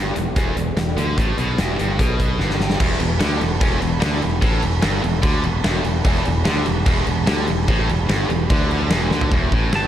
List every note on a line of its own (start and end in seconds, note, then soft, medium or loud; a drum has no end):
0.00 0.15 G1 medium
0.00 0.15 G2 medium
0.16 0.36 E1 medium
0.16 0.32 E2 medium
0.16 closed hi-hat medium
0.36 0.55 E1 medium
0.36 0.56 E2 loud
0.36 kick loud
0.36 closed hi-hat medium
0.56 0.76 E1 medium
0.56 0.73 E2 medium
0.56 closed hi-hat medium
0.76 0.96 E1 medium
0.76 0.94 E2 medium
0.76 snare loud
0.76 closed hi-hat medium
0.96 1.16 D2 medium
0.96 1.17 D3 loud
0.96 closed hi-hat medium
1.18 1.37 A1 medium
1.18 1.38 A2 loud
1.18 kick loud
1.18 closed hi-hat medium
1.38 1.57 B1 medium
1.38 1.58 B2 loud
1.38 closed hi-hat medium
1.58 1.78 E1 medium
1.58 1.79 E2 loud
1.58 snare loud
1.58 closed hi-hat medium
1.79 1.98 G1 medium
1.79 1.99 G2 medium
1.79 closed hi-hat medium
1.99 2.37 B1 medium
1.99 2.39 B2 medium
1.99 kick loud
1.99 closed hi-hat medium
2.20 kick medium
2.20 closed hi-hat soft
2.39 2.77 G1 medium
2.39 2.79 G2 loud
2.39 snare medium
2.50 snare medium
2.60 snare medium
2.70 snare medium
2.80 2.99 E1 medium
2.80 2.99 E2 loud
2.80 kick loud
2.80 crash loud
2.80 crash medium
3.00 3.20 E1 medium
3.00 3.17 E2 medium
3.00 crash medium
3.20 3.40 D2 loud
3.20 3.40 D3 loud
3.20 snare loud
3.20 crash medium
3.41 3.60 E1 medium
3.41 3.57 E2 medium
3.41 crash medium
3.61 3.80 E1 medium
3.61 3.80 E2 loud
3.61 kick loud
3.61 crash medium
3.81 4.01 E1 medium
3.81 3.98 E2 medium
3.81 crash medium
4.00 4.21 D2 medium
4.00 4.21 D3 loud
4.00 snare loud
4.00 crash medium
4.21 4.41 E1 medium
4.21 4.38 E2 medium
4.21 crash medium
4.42 4.61 A1 loud
4.42 4.62 A2 loud
4.42 kick loud
4.42 crash medium
4.62 4.82 E1 medium
4.62 4.79 E2 medium
4.62 crash medium
4.82 5.02 G1 loud
4.82 5.02 G2 loud
4.82 snare loud
4.82 crash medium
5.02 5.22 E1 medium
5.02 5.19 E2 medium
5.02 crash medium
5.22 5.42 D2 medium
5.22 5.43 D3 loud
5.22 kick loud
5.22 crash medium
5.43 5.63 E1 medium
5.43 5.60 E2 medium
5.43 crash medium
5.64 5.83 E1 medium
5.64 5.82 E2 loud
5.64 snare loud
5.64 crash medium
5.83 6.03 E1 medium
5.83 6.00 E2 medium
5.83 crash medium
6.05 6.24 E1 medium
6.05 6.24 E2 loud
6.05 kick loud
6.05 crash medium
6.15 snare soft
6.25 6.45 E1 medium
6.25 6.42 E2 medium
6.25 crash medium
6.45 6.65 D2 loud
6.45 6.65 D3 loud
6.45 snare loud
6.45 crash medium
6.65 6.85 E1 medium
6.65 6.82 E2 medium
6.65 crash medium
6.86 7.05 E1 loud
6.86 7.06 E2 loud
6.86 kick loud
6.86 crash loud
7.07 7.26 E1 medium
7.07 7.23 E2 medium
7.07 crash medium
7.27 7.47 D2 loud
7.27 7.47 D3 loud
7.27 snare loud
7.27 crash medium
7.47 7.67 E1 medium
7.47 7.64 E2 medium
7.47 crash medium
7.68 7.87 A1 medium
7.68 7.88 A2 loud
7.68 kick loud
7.68 crash medium
7.88 8.08 E1 medium
7.88 8.05 E2 medium
7.88 crash medium
8.09 8.28 G1 loud
8.09 8.29 G2 loud
8.09 snare loud
8.09 crash medium
8.29 8.48 E1 medium
8.29 8.46 E2 medium
8.29 crash medium
8.50 8.88 D2 loud
8.50 8.91 D3 loud
8.50 kick loud
8.50 crash medium
8.71 crash medium
8.90 9.09 E1 medium
8.90 9.11 E2 loud
8.90 snare loud
8.90 crash medium
9.10 9.30 D2 medium
9.10 9.31 D3 loud
9.10 snare medium
9.21 floor tom medium
9.31 9.51 E1 medium
9.31 9.52 E2 loud
9.31 kick loud
9.31 crash medium
9.52 9.71 A1 medium
9.52 9.72 A2 loud
9.52 kick medium
9.73 9.87 G1 medium
9.73 9.87 G2 loud
9.73 9.86 A5 loud
9.73 snare loud
9.73 crash medium